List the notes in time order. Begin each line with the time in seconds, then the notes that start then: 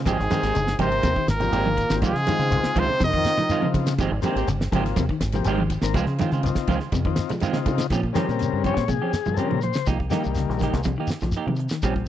0.05 G#1 G#2 D#3 F3 G#3 C4 G4 G#4, kick, ride bell, low conga, shekere
0.20 G#1, muted clean electric guitar stroke, snare
0.30 D#3 G#3 A#3 C4 G4, snare, ride bell, high conga, shekere
0.43 G#1 G#3 C4 G4, snare, ride bell, shekere
0.55 G1 C#3, muted clean electric guitar stroke, ride bell, shekere
0.67 snare
0.79 G#1 C3 C#3 D#3 G#3 A#3 C4 G4 A#4 C5, kick, ride bell, high conga, shekere
0.85 C4
0.92 muted clean electric guitar stroke, ride bell
1.03 D#2 C3, kick, ride bell, high conga, shekere
1.16 D#3, muted clean electric guitar stroke, kick
1.27 G#1 A#2 A#4, muted clean electric guitar stroke, snare, ride bell, shekere
1.34 A#3
1.40 F3 A#3 C4 G4, muted clean electric guitar stroke, ride bell, low conga, shekere
1.52 G#1 D#3 G#3 C4 G4, ride bell, shekere
1.65 D#3, high conga
1.77 muted clean electric guitar stroke, kick, ride bell, shekere
1.89 G#1 D#3 A#3 C4 G4, muted clean electric guitar stroke, snare, shekere
2.02 C#2 G#2 D#3 F3 G#3 C4 F4, kick, ride bell, low conga, shekere
2.06 G#3 G#4
2.15 C#3, muted clean electric guitar stroke, snare
2.27 D#3 G#3 C4 F4, snare, ride bell, high conga, shekere
2.39 C#3 C4 F4, shekere
2.50 C2 C#3 C4 D#4 F4, muted clean electric guitar stroke, ride bell, shekere
2.64 snare
2.76 C#2 C3 C#3 D#3 G#3 C4 F4 C5, kick, ride bell, high conga, shekere
2.88 muted clean electric guitar stroke, low conga
3.00 F2 C3 D#3, kick, ride bell, high conga, shekere
3.04 D#4 D#5
3.11 D#3 C4 D#4 F4, kick
3.24 muted clean electric guitar stroke, snare, ride bell, shekere
3.37 F3, muted clean electric guitar stroke, snare, ride bell, low conga, shekere
3.49 D#3 G#3 C4 F4, ride bell, shekere
3.60 C#3 C4 D#4 F4, high conga
3.74 C#3, muted clean electric guitar stroke, kick, ride bell, high conga, shekere
3.87 C#3, muted clean electric guitar stroke, snare, ride bell, shekere
3.98 G#1 D#3 F3 G#3 C4 G4, kick, ride bell, low conga, shekere
4.12 G#1, muted clean electric guitar stroke
4.22 D#3 G#3 A#3 C4 G4, ride bell, high conga, shekere
4.26 G4
4.36 G#1 G#3 C4 G4, ride bell, shekere
4.47 G1 C#3, muted clean electric guitar stroke, ride bell, shekere
4.61 snare
4.72 G#1 C#3 D#3 G#3 A#3 C4 F4, kick, ride bell, high conga, shekere
4.76 G4
4.86 muted clean electric guitar stroke, snare, ride bell
4.96 D#2 C3, kick, snare, ride bell, high conga, shekere
5.09 D#3, muted clean electric guitar stroke, kick
5.20 G#1, muted clean electric guitar stroke, snare, ride bell, shekere
5.32 F3 A#3 C4 G4, muted clean electric guitar stroke, snare, ride bell, low conga, shekere
5.44 G#1 D#3 G#3 C4 G4, ride bell, shekere
5.58 D#3, high conga
5.70 muted clean electric guitar stroke, kick, ride bell, shekere
5.82 G#1 D#3 A#3 C4 A#4, muted clean electric guitar stroke, snare, shekere
5.94 C#2 F3 G#3 C4 F4, muted clean electric guitar stroke, kick, ride bell, low conga, shekere
6.06 C#3, muted clean electric guitar stroke, snare
6.18 D#3 G#3 C4 F4, snare, ride bell, high conga, shekere
6.31 C#3 G#3 C4 F4, snare, shekere
6.43 C2 C#3 C4 D#4 F4, muted clean electric guitar stroke, ride bell, shekere
6.55 kick, snare
6.67 C#2 C#3 D#3 G#3 C4 F4, kick, ride bell, high conga, shekere
6.80 muted clean electric guitar stroke, snare
6.92 F2 C3, kick, ride bell, high conga, shekere
7.05 D#3 C4 D#4 F4, muted clean electric guitar stroke, kick
7.16 muted clean electric guitar stroke, snare, ride bell, shekere
7.29 F3, muted clean electric guitar stroke, snare, ride bell, low conga, shekere
7.40 D#3 G#3 C4 F4, ride bell, high conga, shekere
7.53 C#3 C4 D#4 F4, snare
7.66 C#3, muted clean electric guitar stroke, kick, ride bell, low conga, shekere
7.78 C#3, muted clean electric guitar stroke, snare, ride bell, low conga, shekere
7.90 A#2 F3 C4 C#4 G4, kick, snare, closed hi-hat, low conga, shekere
8.03 muted clean electric guitar stroke, kick
8.13 C#3 D#3 F3 G3 C4 C#4 G4 A#4, snare, closed hi-hat, high conga, shekere
8.28 A#2, muted clean electric guitar stroke, snare, shekere
8.39 C#3, closed hi-hat, shekere
8.53 G2, muted clean electric guitar stroke
8.64 C#3 F3 C4 C#4 G4 C#5, kick, closed hi-hat, high conga, shekere
8.77 A#2, muted clean electric guitar stroke, kick, snare, closed hi-hat
8.88 C3 G#4, muted clean electric guitar stroke, kick, closed hi-hat, high conga, shekere
9.02 F3 C4 C#4 G4
9.13 muted clean electric guitar stroke, snare, closed hi-hat, shekere
9.25 G2 F3, low conga, shekere
9.34 C#3 G3 C4 A4 A#4, shekere
9.38 F3 C4 C#4 G4, closed hi-hat
9.50 A#2 C#3, muted clean electric guitar stroke, high conga
9.61 C5, muted clean electric guitar stroke, closed hi-hat, high conga, shekere
9.74 C#3, snare, shekere
9.86 C2 F3 A#3 D#4 G4, kick, closed hi-hat, low conga, shekere
10.00 muted clean electric guitar stroke, kick
10.10 D#3 G3 A#3 D#4 G4, snare, closed hi-hat, high conga, shekere
10.24 C2, muted clean electric guitar stroke, shekere
10.35 C#3, snare, closed hi-hat, shekere
10.49 A#1, muted clean electric guitar stroke, snare
10.59 C#3 A#3, kick, snare, closed hi-hat, high conga, shekere
10.63 D#4 G4
10.73 C2, muted clean electric guitar stroke, kick, snare, closed hi-hat, low conga
10.83 C3, kick, closed hi-hat, high conga, shekere
10.88 muted clean electric guitar stroke
10.98 D#3 A#3 D#4 G4
11.07 snare, closed hi-hat, shekere
11.13 muted clean electric guitar stroke
11.21 A#1 F3, snare, closed hi-hat, low conga, shekere
11.32 closed hi-hat, shekere
11.36 A#3 D#4 G4
11.47 C3 D#3, high conga
11.56 muted clean electric guitar stroke, closed hi-hat, shekere
11.69 D#3, snare, closed hi-hat, shekere
11.82 A#1 F3 G3 C4 C#4 G4, kick, closed hi-hat, low conga, shekere
11.96 muted clean electric guitar stroke, kick